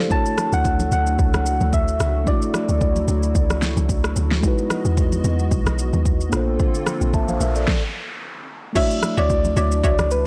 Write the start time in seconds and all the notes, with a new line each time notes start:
Already playing: G4 A4 C5 D5 F5
0.00 E4 A4
0.08 F#3 A3 D4 E4 F#4 A5, kick, low conga, shaker
0.13 F#4 C#5
0.26 shaker
0.38 cross-stick, high conga, shaker
0.53 D2 F#5, shaker
0.64 kick, low conga, shaker
0.80 high conga, shaker
0.92 D2 F#5, low conga, shaker
1.07 shaker
1.19 C#2, kick, shaker
1.34 C#2, cross-stick, high conga, shaker
1.46 shaker
1.61 D2, high conga, shaker
1.73 E5, kick, shaker
1.88 shaker
2.00 C#2, cross-stick, low conga, shaker
2.24 A3 D4 E4 D5, kick, low conga, shaker
2.29 F#4 D5
2.42 shaker
2.54 cross-stick, high conga, shaker
2.69 D2, shaker
2.81 kick, low conga, shaker
2.96 high conga, shaker
3.08 D2, low conga, shaker
3.23 shaker
3.35 C#2, kick, shaker
3.50 cross-stick, high conga, shaker
3.62 snare, shaker
3.77 C#2, high conga, shaker
3.89 kick, shaker
4.04 cross-stick, shaker
4.16 D2, low conga, shaker
4.31 snare
4.40 G#3 B3 D#4 E4 F#4 D#5, kick, low conga, shaker
4.46 F#4 B4
4.58 shaker
4.70 cross-stick, high conga, shaker
4.85 E2, shaker
4.97 kick, low conga, shaker
5.12 high conga, shaker
5.24 E2, low conga, shaker
5.39 shaker
5.51 B1, kick, shaker
5.66 B1, cross-stick, high conga, shaker
5.79 shaker
5.93 D#2, high conga, shaker
6.05 kick, shaker
6.21 shaker
6.30 A#1 D3 A#3 C4 D4 F4 A4, cross-stick, low conga, shaker
6.35 A4 C5
6.60 kick, noise sweep, low conga, shaker
6.74 shaker
6.87 cross-stick, high conga, shaker
7.01 A#1, shaker
7.13 E5 A5, kick, low conga, shaker
7.28 C5 F5, high conga, shaker
7.40 A#1 A#4 E5, low conga, shaker
7.55 A4 D5, shaker
7.68 kick, snare
8.73 E3 F#3 A3 D4 E4 F#4 C#5 E5, kick, crash, low conga, shaker
8.77 F#4 D5 E5
8.91 shaker
9.03 cross-stick, high conga, shaker
9.17 D2 F#4 C#5 D5 E5, shaker
9.30 kick, low conga, shaker
9.45 high conga, shaker
9.56 D2 F#4 C#5 D5 E5, low conga, shaker
9.72 shaker
9.83 C#2 F#4 C#5 D5 E5, kick, shaker
9.99 C#2, cross-stick, high conga, shaker
10.11 B4, shaker